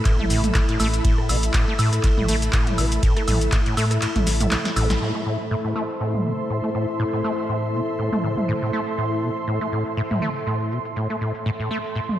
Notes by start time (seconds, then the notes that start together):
Already playing: A3 E4 A4 E5 B5
0.05 A2, kick, clap, closed hi-hat, ride, shaker
0.19 A1 A3, mid tom
0.30 A1 A2, open hi-hat, shaker
0.44 closed hi-hat, mid tom, shaker
0.54 A2, kick, cross-stick, clap, closed hi-hat, ride, shaker
0.69 A2, closed hi-hat
0.80 A1 A3, open hi-hat, high woodblock, shaker
0.94 closed hi-hat, shaker
1.05 A2, kick, closed hi-hat, ride, shaker
1.18 cross-stick
1.29 A1 B2, open hi-hat, high woodblock, shaker
1.43 closed hi-hat, shaker
1.54 A2, kick, clap, closed hi-hat, ride, shaker
1.68 A3
1.79 A2, open hi-hat, high woodblock, shaker
1.93 cross-stick, closed hi-hat, shaker
2.03 A2, kick, clap, closed hi-hat, ride, shaker
2.17 A1 A2, mid tom
2.28 A1 A3, open hi-hat, shaker
2.42 closed hi-hat, shaker
2.53 A2, kick, cross-stick, clap, closed hi-hat, ride, shaker
2.67 closed hi-hat, mid tom
2.78 A1 B2, open hi-hat, high woodblock, shaker
2.92 closed hi-hat, shaker
3.03 A2, kick, closed hi-hat, ride, shaker
3.17 A3, cross-stick, closed hi-hat
3.28 A1 A2, mid tom, open hi-hat, high woodblock, shaker
3.41 closed hi-hat, shaker
3.52 A2, kick, clap, closed hi-hat, ride, shaker
3.66 A2, closed hi-hat
3.77 A2 A3, open hi-hat, high woodblock, shaker
3.91 cross-stick, closed hi-hat, shaker
4.01 A2, clap, closed hi-hat, ride, shaker
4.16 A1, closed hi-hat, mid tom
4.27 A1, snare, open hi-hat, shaker
4.41 A2, closed hi-hat, mid tom, shaker
4.51 A1, snare, clap, closed hi-hat, ride, shaker
4.65 snare, closed hi-hat
4.76 A1 A2, open hi-hat, high woodblock, shaker
4.90 A1, snare, closed hi-hat, shaker
5.01 A2 A3 E4 A4 C5, closed hi-hat, shaker
5.15 A3
5.26 A2 C6, shaker
5.39 E5, closed hi-hat, shaker
5.51 A2, closed hi-hat, shaker
5.65 A2
5.76 A3, shaker
5.89 closed hi-hat, shaker
6.00 A2, closed hi-hat, shaker
6.14 mid tom
6.25 B2, shaker
6.39 closed hi-hat, shaker
6.50 A2, closed hi-hat, shaker
6.64 A3
6.75 A2, shaker
6.89 closed hi-hat, shaker
7.00 A2, closed hi-hat
7.13 A2
7.24 A3
7.38 closed hi-hat
7.49 A2, closed hi-hat
7.74 B2, shaker
7.88 closed hi-hat, shaker
7.99 A2, closed hi-hat
8.12 A3, mid tom
8.24 A2, shaker
8.37 closed hi-hat, mid tom, shaker
8.48 A2, closed hi-hat
8.62 A2, closed hi-hat
8.73 A3
8.87 closed hi-hat, shaker
8.98 A2, closed hi-hat
9.23 B2, shaker
9.36 closed hi-hat, shaker
9.48 A2, closed hi-hat, shaker
9.61 A3
9.72 A2, shaker
9.86 closed hi-hat, shaker
9.97 A2, closed hi-hat
10.11 A2, mid tom
10.22 A3, shaker
10.36 closed hi-hat, shaker
10.47 A2, closed hi-hat, shaker
10.60 closed hi-hat
10.71 B2, shaker
10.85 closed hi-hat, shaker
10.96 A2, closed hi-hat, shaker
11.10 A3, closed hi-hat
11.21 A2, shaker
11.35 closed hi-hat, shaker
11.46 A2, closed hi-hat, shaker
11.60 A2
11.71 A3, shaker
11.84 closed hi-hat, shaker
11.95 A2, closed hi-hat, shaker
12.09 mid tom